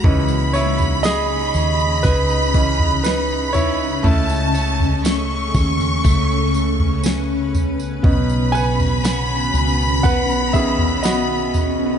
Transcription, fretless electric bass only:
\new Staff \with { instrumentName = "Fretless electric bass" } { \clef bass \time 4/4 \key cis \minor \tempo 4 = 60 cis,4. dis,8 cis,2 | cis,4. dis,8 cis,2 | b,,4. cis,8 b,,2 | }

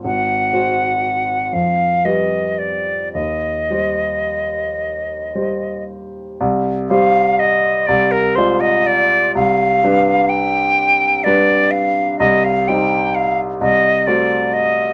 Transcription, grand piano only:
\new Staff \with { instrumentName = "Grand piano" } { \time 6/8 \key c \minor \tempo 4. = 41 aes,,8 <aes ges' c''>4 f,8 <g g' b'>4 | ees,8 <g g' c''>4. <g g' c''>4 | c,8 <g g' c''>4 c,8 <aes f' d''>4 | c,8 <g d' b'>4. <g d' b'>4 |
c,8 <g ees' c''>4 c,8 <a ges' c''>4 | }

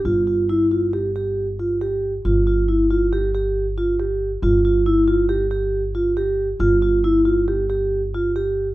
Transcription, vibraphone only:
\new Staff \with { instrumentName = "Vibraphone" } { \time 5/4 \key f \lydian \tempo 4 = 137 f'8 f'8 e'8 f'8 g'8 g'4 f'8 g'4 | f'8 f'8 e'8 f'8 g'8 g'4 f'8 g'4 | f'8 f'8 e'8 f'8 g'8 g'4 f'8 g'4 | f'8 f'8 e'8 f'8 g'8 g'4 f'8 g'4 | }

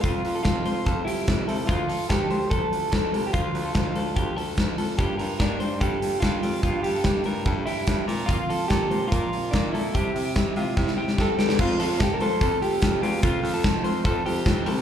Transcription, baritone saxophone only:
\new Staff \with { instrumentName = "Baritone saxophone" } { \clef bass \time 4/4 \key f \major \tempo 4 = 146 f,8 f,8 f,8 f,8 f,8 f,8 f,8 c,8 | d,8 r8 d,8 d,8 d,8 d,8 d,8 c,8 | d,8 d,8 d,8 d,8 d,8 d,8 d,8 f,8 | g,8 g,8 g,8 g,8 g,8 g,8 g,8 f,8 |
g,8 g,8 g,8 g,8 g,8 g,8 g,8 bes,8~ | bes,8 r8 bes,8 bes,8 bes,8 bes,8 bes,8 bes,8 | c8 c8 c8 c8 c8 c8 c8 e,8 | f,8 f,8. r16 f,8 f,8 f,8 f,8 e,8 |
f,8 f,8. r16 f,8 f,8 f,8 f,8 c,8 | }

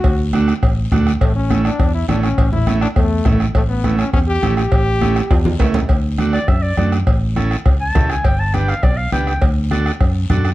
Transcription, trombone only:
\new Staff \with { instrumentName = "Trombone" } { \time 4/4 \key d \major \tempo 4 = 204 fis'4 r2. | a8 cis'4 d'4 e'8 d'8 cis'8~ | cis'8 e'4 d'8 a4. r8 | a8 b4 cis'8 cis'8 g'4 g'8~ |
g'2. r4 | r1 | r1 | r1 |
r1 | }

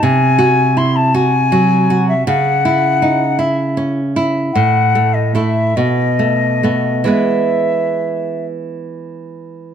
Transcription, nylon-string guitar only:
\new Staff \with { instrumentName = "Nylon-string guitar" } { \time 6/8 \key e \major \tempo 4. = 51 bis,8 fis'8 e'8 fis'8 fis8 fis'8 | cis8 e'8 dis'8 e'8 cis'8 e'8 | a,8 a8 <a e'>8 b,8 a8 <a b>8 | <e gis b>2. | }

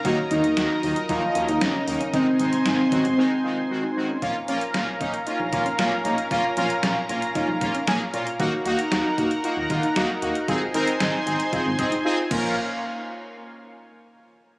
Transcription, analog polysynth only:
\new Staff \with { instrumentName = "Analog polysynth" } { \time 4/4 \key bes \minor \tempo 4 = 115 <ees ges bes ees'>16 r16 <ees ges bes ees'>16 r16 <ees ges bes ges'>16 r16 <ees ges bes ees'>16 r16 <ees ges bes ees'>16 r16 <ees ges bes des'>16 r16 <ees ges bes ees'>16 r16 <ees ges bes ees'>16 r16 | <ees aes c' ees'>16 r16 <ees aes c' ees'>16 r16 <ees aes c' f'>16 r16 <ees aes c' ges'>16 r16 <ees aes c' ees'>16 r16 <ees aes c' ees'>16 r16 <ees aes c' ges'>16 r16 <ees aes c' ges'>16 r16 | <bes des' f'>16 r16 <bes des' f'>16 r16 <bes des' f'>16 r16 <bes des' ees'>16 r16 <bes des' f'>16 r16 <bes des' f'>16 r16 <bes des' f'>16 r16 <bes des' ees'>16 r16 | <bes des' f'>16 r16 <bes des' f'>16 r16 <bes des' f'>16 r16 <bes des' f'>16 r16 <bes des' f'>16 r16 <bes des' f'>16 r16 <bes des' aes'>16 r16 <bes des' f'>16 r16 |
<bes ees' ges'>16 r16 <bes ees' ges'>16 r16 <bes ees' ges'>16 r16 <bes ees' ges'>16 r16 <bes ees' ges'>16 r16 <bes ees' f'>16 r16 <bes ees' ges'>16 r16 <bes ees' ges'>16 r16 | <c' ees' aes'>16 r16 <c' ees' bes'>16 r16 <c' ees' aes'>16 r16 <c' ees' aes'>16 r16 <c' ees' aes'>16 r16 <c' ees' aes'>16 r16 <c' ees' aes'>16 r16 <des' f' bes'>8 | r1 | }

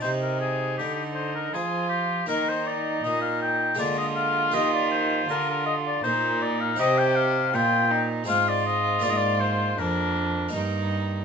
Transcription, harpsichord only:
<<
  \new Staff \with { instrumentName = "Harpsichord" } { \time 3/4 \key ees \major \tempo 4 = 80 ees'2. | <bes ees'>2 <aes bes f'>4 | <bes g'>2. | \key c \minor <c' ees'>2 <aes c' f'>4 |
<bes d' f'>2 <bes ees'>4 | }
  \new Staff \with { instrumentName = "Harpsichord" } { \clef bass \time 3/4 \key ees \major c4 d4 f4 | ees4 bes,4 d4 | ees4 d4 bes,4 | \key c \minor c4 bes,4 aes,4 |
aes,4 f,4 g,4 | }
>>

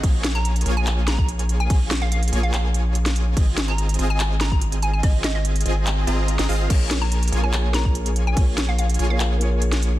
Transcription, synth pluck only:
\new Staff \with { instrumentName = "Synth pluck" } { \time 4/4 \key bes \minor \tempo 4 = 144 r8. bes''16 r8. aes''8. bes''16 bes''16 r8. aes''16 | r8. f''16 f''16 r8 f''16 f''16 r4. r16 | r8. bes''16 r8. aes''8. bes''16 bes''16 r8 aes''16 aes''16 | ees''16 r16 ees''16 ees''16 r2. |
r8. bes''16 r8. aes''8. bes''16 bes''16 r8. aes''16 | r8. f''16 f''16 r8 f''16 f''16 r4. r16 | }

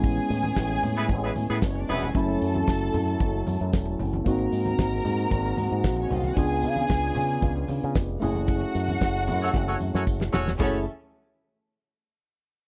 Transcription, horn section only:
\new Staff \with { instrumentName = "Horn section" } { \time 4/4 \key fis \minor \tempo 4 = 114 r4. r16 <b e' gis' b'>16 r16 <b e' gis' b'>16 r16 <b e' gis' b'>16 r8 <b e' gis' b'>8 | r1 | r1 | r1 |
r4. r16 <cis' fis' a' cis''>16 r16 <cis' fis' a' cis''>16 r16 <cis' fis' a' cis''>16 r8 <cis' fis' a' cis''>8 | <a cis' fis' cis''>8 r2. r8 | }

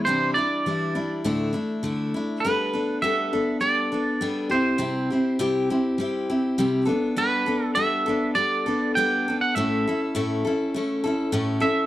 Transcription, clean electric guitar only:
\new Staff \with { instrumentName = "Clean electric guitar" } { \time 4/4 \key a \major \tempo 4 = 101 c''8 d''4. r2 | \key g \lydian b'4 e''4 d''4. c''8~ | c''4 r2. | b'4 e''4 d''4 g''8. fis''16 |
e''2.~ e''8 e''8 | }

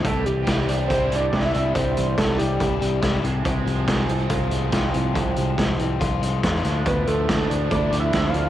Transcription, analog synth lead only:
\new Staff \with { instrumentName = "Analog synth lead" } { \time 4/4 \key c \major \tempo 4 = 141 a'8 g'4 r8 \tuplet 3/2 { c''4 d''8~ d''8 e''4 } | c''4 a'8 g'2 r8 | r1 | r1 |
b'8 a'4 r8 \tuplet 3/2 { d''4 e''8~ e''8 f''8. r16 } | }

